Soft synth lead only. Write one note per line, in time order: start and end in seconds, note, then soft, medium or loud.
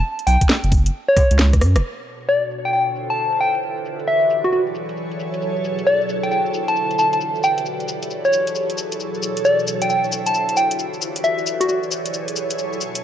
0.27 0.41 G5 medium
1.08 1.53 C#5 loud
2.29 2.43 D5 medium
2.65 2.70 G5 medium
2.73 2.82 G5 medium
3.10 3.39 A5 medium
3.41 3.55 G5 medium
4.08 4.36 E5 medium
4.44 4.49 F#4 medium
4.53 4.62 F#4 medium
5.87 6.01 D5 medium
6.23 6.29 G5 medium
6.32 6.41 G5 medium
6.68 6.97 A5 medium
6.99 7.08 A5 medium
7.13 7.18 A5 medium
7.44 7.58 G5 medium
8.25 8.70 C#5 medium
9.45 9.59 D5 medium
9.82 9.87 G5 medium
9.90 9.99 G5 medium
10.26 10.55 A5 medium
10.57 10.71 G5 medium
11.24 11.52 E5 medium
11.61 11.66 F#4 medium
11.69 11.78 F#4 medium